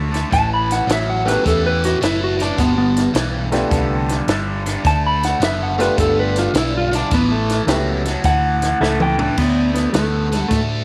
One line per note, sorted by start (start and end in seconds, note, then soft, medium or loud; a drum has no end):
0.00 0.23 D2 medium
0.11 0.29 D3 medium
0.11 0.29 A3 medium
0.11 closed hi-hat medium
0.15 snare soft
0.30 0.80 A1 medium
0.30 0.84 A2 medium
0.30 0.84 E3 loud
0.30 0.51 A5 loud
0.30 kick loud
0.30 snare soft
0.30 closed hi-hat medium
0.54 0.71 B5 medium
0.71 0.89 F#5 medium
0.71 snare soft
0.71 closed hi-hat medium
0.86 1.35 A1 medium
0.86 1.21 A2 medium
0.86 1.22 F#3 medium
0.86 closed hi-hat medium
0.91 1.09 E5 medium
0.91 snare loud
1.10 1.27 F#5 medium
1.25 1.42 A2 medium
1.25 1.43 F#3 medium
1.25 1.97 A3 medium
1.25 1.98 B3 medium
1.25 1.98 C#4 medium
1.25 1.98 E4 medium
1.25 1.98 G4 medium
1.25 1.46 B4 loud
1.25 closed hi-hat medium
1.29 snare soft
1.43 1.93 E2 medium
1.43 1.97 A2 medium
1.43 1.97 E3 loud
1.43 kick loud
1.43 closed hi-hat medium
1.48 1.65 A4 medium
1.48 snare soft
1.66 1.83 B4 medium
1.84 2.02 F#4 medium
1.84 snare soft
1.84 closed hi-hat medium
2.01 2.49 F#1 loud
2.01 2.35 A2 medium
2.01 2.35 E3 loud
2.01 2.21 E4 loud
2.01 snare loud
2.01 closed hi-hat medium
2.24 2.40 F#4 medium
2.38 2.56 A2 medium
2.38 2.56 E3 medium
2.38 2.59 D4 medium
2.38 snare soft
2.38 closed hi-hat medium
2.57 3.06 G1 medium
2.57 3.10 G2 loud
2.57 3.11 D3 loud
2.57 2.77 B3 loud
2.57 kick loud
2.57 snare soft
2.57 closed hi-hat medium
2.78 3.08 B3 loud
2.96 snare soft
2.96 closed hi-hat medium
3.13 3.62 B1 medium
3.13 3.48 G2 medium
3.13 3.48 E3 medium
3.13 snare loud
3.13 closed hi-hat medium
3.52 3.69 G2 medium
3.52 3.70 E3 medium
3.52 4.24 A3 medium
3.52 4.24 B3 medium
3.52 4.24 D4 medium
3.52 4.25 F4 medium
3.52 4.25 G4 medium
3.52 snare soft
3.52 closed hi-hat medium
3.70 4.19 C2 medium
3.70 4.24 G2 medium
3.70 4.24 D3 loud
3.70 kick loud
3.70 snare soft
3.70 closed hi-hat medium
4.09 snare soft
4.09 closed hi-hat medium
4.27 4.75 G1 loud
4.27 4.62 G2 medium
4.27 4.62 D3 loud
4.27 snare loud
4.27 closed hi-hat medium
4.66 4.83 G2 medium
4.66 4.82 D3 medium
4.66 snare soft
4.66 closed hi-hat medium
4.83 5.33 D2 medium
4.83 5.37 D3 medium
4.83 5.37 A3 loud
4.83 5.04 A5 loud
4.83 kick loud
4.83 snare soft
4.83 closed hi-hat medium
5.07 5.23 B5 medium
5.23 5.42 F#5 loud
5.23 snare soft
5.23 closed hi-hat medium
5.40 5.88 F#1 medium
5.40 5.74 D3 medium
5.40 5.74 B3 medium
5.40 snare loud
5.40 closed hi-hat medium
5.44 5.61 E5 loud
5.63 5.80 F#5 medium
5.78 5.95 D3 medium
5.78 6.50 A3 medium
5.78 5.96 B3 medium
5.78 6.51 B3 medium
5.78 6.51 D4 medium
5.78 6.51 F4 medium
5.78 6.51 G4 medium
5.78 5.98 B4 medium
5.78 snare soft
5.78 closed hi-hat medium
5.97 6.46 G1 loud
5.97 6.50 G2 medium
5.97 6.51 D3 medium
5.97 6.17 A4 loud
5.97 kick loud
5.97 snare soft
5.97 closed hi-hat loud
6.20 6.37 B4 medium
6.36 6.55 F4 medium
6.36 snare soft
6.36 closed hi-hat medium
6.54 7.02 B1 loud
6.54 6.88 G2 loud
6.54 6.88 D3 loud
6.54 6.74 E4 loud
6.54 snare loud
6.54 closed hi-hat loud
6.77 6.94 F4 loud
6.91 7.09 G2 medium
6.91 7.09 D3 medium
6.91 7.12 D4 medium
6.91 snare soft
6.91 closed hi-hat medium
7.11 7.59 A1 medium
7.11 7.64 A2 loud
7.11 7.64 E3 loud
7.11 7.31 B3 loud
7.11 kick loud
7.11 snare soft
7.11 closed hi-hat medium
7.32 7.61 A3 medium
7.49 snare soft
7.49 closed hi-hat medium
7.67 8.15 C#2 medium
7.67 8.01 A2 medium
7.67 8.02 F#3 medium
7.67 8.01 A3 medium
7.67 8.01 B3 medium
7.67 8.02 C#4 medium
7.67 8.02 E4 medium
7.67 8.02 G4 medium
7.67 snare loud
7.67 closed hi-hat medium
8.05 8.22 A2 medium
8.05 8.22 F#3 medium
8.05 snare soft
8.05 closed hi-hat medium
8.24 8.72 D2 medium
8.24 8.77 A2 medium
8.24 8.77 E3 medium
8.24 8.98 F#5 loud
8.24 kick loud
8.24 snare soft
8.24 closed hi-hat medium
8.62 snare soft
8.62 closed hi-hat medium
8.81 9.28 C#2 loud
8.81 9.15 A2 medium
8.81 9.15 E3 loud
8.81 9.20 A3 loud
8.81 snare medium
9.00 9.38 G5 loud
9.00 mid tom medium
9.18 9.36 A2 medium
9.18 9.36 E3 medium
9.18 9.36 D4 loud
9.18 floor tom loud
9.38 9.85 D2 medium
9.38 9.90 D3 medium
9.38 9.90 A3 medium
9.38 9.73 B3 medium
9.38 kick loud
9.38 snare soft
9.38 crash loud
9.74 9.92 B3 medium
9.74 snare soft
9.74 closed hi-hat medium
9.93 10.42 D2 medium
9.93 10.28 D3 medium
9.93 10.47 A3 medium
9.93 10.28 B3 medium
9.93 snare loud
9.93 closed hi-hat medium
10.32 10.49 D3 medium
10.32 10.49 B3 medium
10.32 snare soft
10.32 closed hi-hat medium
10.49 10.84 A2 medium
10.49 10.84 D3 medium
10.49 10.59 A3 medium
10.49 10.84 A3 medium
10.49 kick loud
10.49 snare soft
10.49 closed hi-hat medium